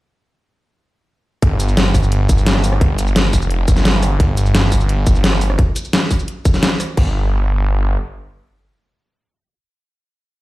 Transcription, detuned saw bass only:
1.42 2.28 G1 loud
2.29 2.80 G1 medium
2.81 3.32 G1 loud
3.33 3.67 F1 loud
3.68 4.19 G1 loud
4.20 5.05 G1 loud
5.07 5.57 G1 loud
6.97 7.97 G1 loud

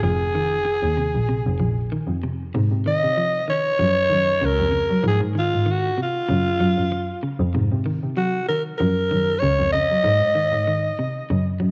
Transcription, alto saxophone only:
0.03 1.87 G#4 medium
2.87 3.45 D#5 loud
3.50 4.47 C#5 loud
4.45 5.06 A#4 loud
5.08 5.21 G#4 medium
5.39 5.72 F4 medium
5.71 6.00 F#4 medium
6.02 7.21 F4 medium
8.17 8.46 F#4 medium
8.48 8.63 A#4 medium
8.78 9.41 A#4 medium
9.39 9.72 C#5 loud
9.72 11.57 D#5 loud

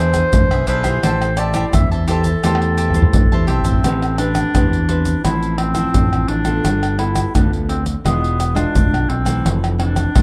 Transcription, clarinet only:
0.00 0.68 C5 loud
0.68 1.39 C5 medium
1.38 1.73 D5 medium
1.74 1.90 E5 medium
2.09 3.45 A4 medium
3.48 4.15 C4 medium
4.18 5.20 D4 medium
5.24 5.59 E4 medium
5.58 6.30 C4 medium
6.28 7.00 D4 medium
6.98 7.34 E4 medium
7.35 7.51 D4 medium
7.69 7.85 C4 medium
8.06 8.57 B3 medium
8.56 9.11 D4 loud
9.10 9.53 C4 medium
9.79 10.22 D4 medium

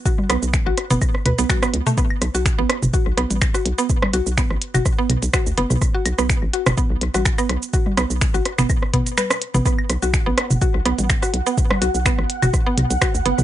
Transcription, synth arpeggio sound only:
0.06 0.13 F#4 medium
0.30 0.35 B3 loud
0.67 0.73 F#4 medium
0.90 0.95 B3 loud
1.26 1.31 B4 medium
1.38 1.45 B3 loud
1.50 1.57 F#4 loud
1.62 1.67 B3 loud
1.87 1.91 A3 loud
1.98 2.03 B3 loud
2.35 2.41 F#4 medium
2.59 2.63 B3 loud
2.94 3.01 F#4 medium
3.17 3.23 B3 loud
3.54 3.61 F#4 medium
3.78 3.83 B3 loud
4.14 4.21 F#4 medium
4.38 4.43 B3 loud
4.75 4.81 F#4 medium
4.98 5.03 B3 loud
5.34 5.41 F#4 medium
5.58 5.63 B3 loud
5.95 6.01 F#4 medium
6.19 6.23 B3 loud
6.53 6.61 F#4 medium
6.78 6.83 B3 loud
7.14 7.21 F#4 medium
7.38 7.43 B3 loud
7.74 7.81 F#4 medium
7.97 8.03 B3 loud
8.34 8.41 F#4 medium
8.58 8.63 B3 loud
8.94 8.99 B3 medium
9.18 9.23 B4 loud
9.54 9.57 B3 medium
9.66 9.71 B3 loud
10.02 10.09 F#4 medium
10.26 10.31 B3 loud
10.62 10.69 F#4 medium
10.86 10.91 B3 loud
11.22 11.29 F#4 medium
11.47 11.51 B3 loud
11.82 11.89 F#4 medium
12.06 12.11 B3 loud
12.42 12.49 F#4 medium
12.66 12.71 B3 loud
13.02 13.09 F#4 medium
13.26 13.31 B3 loud

